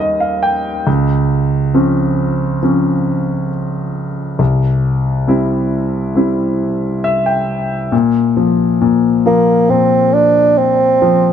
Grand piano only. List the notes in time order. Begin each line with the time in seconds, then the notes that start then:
Already playing: D#2 D#3 G3 A#3
0.00 D#5
0.20 F5
0.43 G5
0.87 C#2
1.74 F3 C4 C#4
2.63 F3 C4 C#4
4.39 C2
5.27 G3 C4 E4
6.15 G3 C4 E4
7.04 E5
7.26 G5
7.92 A#2
8.37 F3
8.81 A#2
9.26 F3
9.69 A#2
11.02 F3